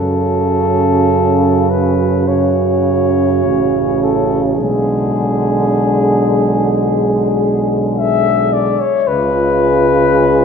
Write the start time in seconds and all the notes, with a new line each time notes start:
Already playing: F#2 C#3 C#4 F#4 A4
1.70 B4
2.28 C#3 C#4 F#4 C#5
3.45 A1
4.02 A4
4.58 B1 D3 G#3 G#4
7.98 E5
8.53 D5
8.80 C#5
9.08 C#2 C#3 G#3 F4 B4